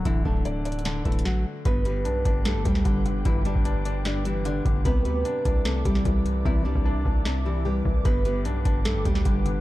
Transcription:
<<
  \new Staff \with { instrumentName = "Ambient pad" } { \time 4/4 \key g \major \tempo 4 = 150 << { r1 | d'''1~ | d'''1~ | d'''1~ |
d'''1~ | d'''1 | } \\ { r1 | <b' g''>1~ | <b' g''>1 | <d'' e''>1~ |
<d'' e''>1 | <b' g''>1 | } >> }
  \new Staff \with { instrumentName = "Nylon-string guitar" } { \time 4/4 \key g \major <e e'>8 <d' d''>4. <d' d''>8 <e e'>8 <fis fis'>8 r8 | <b b'>8 <b b'>4. <a a'>8 <g g'>8 <g g'>4 | <e e'>8 <d' d''>4. <d' d''>8 <e e'>8 <d' d''>8 r8 | <b b'>8 <b b'>4. <a a'>8 <g g'>8 <g g'>4 |
<e e'>8 <d' d''>4. <d' d''>8 <e e'>8 <g g'>8 r8 | <b b'>8 <b b'>4. <a a'>8 <g g'>8 <g g'>4 | }
  \new Staff \with { instrumentName = "Felt piano" } { \clef bass \time 4/4 \key g \major <d fis a>8 a8 d''8 d''8 d8 a4. | g,8 g8 d'8 d'8 g,8 g8 d8 d8 | g,8 g8 d'8 d'8 g,8 g8 d8 d8 | c8 g8 d'8 d'8 c8 g8 e8 e8 |
c8 g8 d'8 d'8 c8 g8 e8 e8 | g,8 g8 d'8 d'8 g,8 g8 d8 d8 | }
  \new Staff \with { instrumentName = "808-style bass" } { \clef bass \time 4/4 \key g \major d,,8 d,,2 d,,8 r4 | g,,4 b,,8 g,,8 b,,16 g,,16 d,8 g,,4 | g,,8. g,,2~ g,,8. g,,8 | c,8 d,8 r8 c,4 c,8 c,4 |
c,8. c,8. c,2 c,8 | g,,4 b,,8 g,,8 b,,16 g,,16 d,8 g,,4 | }
  \new DrumStaff \with { instrumentName = "Drums" } \drummode { \time 4/4 <hh bd>8 bd8 \tuplet 3/2 { hh16 r16 r16 hh16 hh16 hh16 <hh sn>16 r16 r16 <hh bd>16 hh16 hh16 } <bd sn>4 | <hh bd>8 hh8 hh8 <hh bd>8 <hh sn>8 <hh bd>16 sn16 <hh bd>8 hh8 | <hh bd>8 hh16 bd16 hh8 hh8 <hh sn>8 hh8 hh8 <hh bd>8 | <hh bd>8 hh8 hh8 <hh bd>8 <hh sn>8 <hh bd>16 sn16 <hh bd>8 hh8 |
bd8. bd16 r8 bd8 sn4 r8 bd8 | <hh bd>8 hh8 hh8 <hh bd>8 <hh sn>8 <hh bd>16 sn16 <hh bd>8 hh8 | }
>>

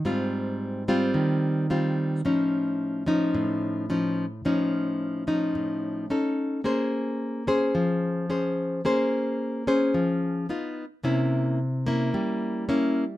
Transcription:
\new Staff \with { instrumentName = "Nylon-string guitar" } { \time 4/4 \key f \minor \tempo 4 = 109 << { <g c' f'>4. <g c' f'>4. <g c' f'>4 | <f cis' ees'>4. <f cis' ees'>4. <f cis' ees'>8 r8 | <f cis' ees'>4. <f cis' ees'>4. <des' ees' a'>4 | <des' aes' c''>4. <des' aes' c''>4. <des' aes' c''>4 |
<des' aes' c''>4. <des' aes' c''>4. <b dis' f'>8 r8 | <bes des' e'>4 r8 <bes des' e'>4. <bes des' e'>8 r8 | } \\ { aes,2 ees2 | a,2 a,2 | a,2 a,4 r4 | bes2 f2 |
bes2 f4 r4 | c2 g2 | } >> }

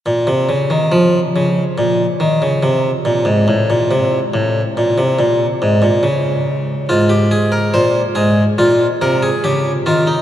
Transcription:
\new Staff \with { instrumentName = "Harpsichord" } { \clef bass \time 4/4 \key f \phrygian \tempo 4 = 70 << { bes,16 c16 des16 ees16 f8 des8 bes,8 ees16 des16 c8 bes,16 aes,16 | a,16 bes,16 c8 a,8 bes,16 c16 bes,8 aes,16 bes,16 des4 | f'16 g'16 aes'16 bes'16 c''8 aes'8 f'8 bes'16 aes'16 g'8 f'16 ees'16 | } \\ { r1 | r1 | aes,4 bes,8 aes,8 bes,8 c8 des8 ees8 | } >> }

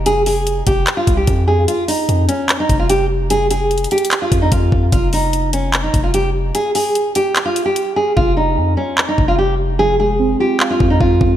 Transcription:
<<
  \new Staff \with { instrumentName = "Nylon-string guitar" } { \time 4/4 \key f \minor \tempo 4 = 148 aes'8 aes'4 g'8. f'8 g'8. aes'8 | f'8 ees'4 des'8. ees'8 f'16 g'8 r8 | aes'8 aes'4 g'8. f'8 ees'16 f'4 | f'8 ees'4 des'8. ees'8 f'16 g'8 r8 |
aes'8 aes'4 g'8. f'8 g'8. aes'8 | f'8 ees'4 des'8. ees'8 f'16 g'8 r8 | aes'8 aes'4 g'8. f'8 ees'16 f'4 | }
  \new Staff \with { instrumentName = "Synth keys" } { \time 4/4 \key f \minor r1 | r1 | r1 | r1 |
r1 | r1 | f8 aes8 c'8 f'8 f''8 f4 c'8 | }
  \new Staff \with { instrumentName = "808-style bass" } { \clef bass \time 4/4 \key f \minor f,,4. f,,8 r8 c,8 f,4 | r4 f,8 r4 f,,4.~ | f,,4. r4 f,8 f,8 f,8 | f,,2~ f,,8 f,,4. |
r1 | f,,4 f,8 r4 f,,4.~ | f,,4. r4 f,8 f,8 f,8 | }
  \new DrumStaff \with { instrumentName = "Drums" } \drummode { \time 4/4 hh8 hho8 hh8 <hh bd>8 <hc hh>8 <hh bd>8 <hh bd>4 | hh8 hho8 hh8 hh8 <hc hh>8 <hh bd>8 hh4 | hh8 hh8 \tuplet 3/2 { hh16 hh16 hh16 hh16 hh16 hh16 } <hc hh>8 <hh bd>8 <hh bd>8 bd8 | <hh bd>8 hho8 hh8 hh8 <hc hh>8 <hh bd>8 hh4 |
hh8 hho8 hh8 hh8 <hc hh>8 hh8 hh4 | bd4 r4 hc8 bd8 r4 | r4 r4 hc8 bd8 bd8 bd8 | }
>>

